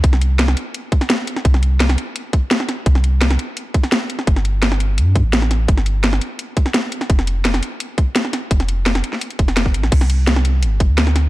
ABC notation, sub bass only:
X:1
M:4/4
L:1/16
Q:1/4=170
K:Gmix
V:1 name="Sub bass" clef=bass
C,,6 z8 z2 | C,,6 z8 z2 | C,,6 z8 z2 | G,,,8 G,,3 A,,,4- A,,, |
G,,,6 z8 z2 | F,,,6 z8 z2 | F,,,6 z4 F,,,4 A,,,2 | C,,8 G,,,3 D,,4- D,, |]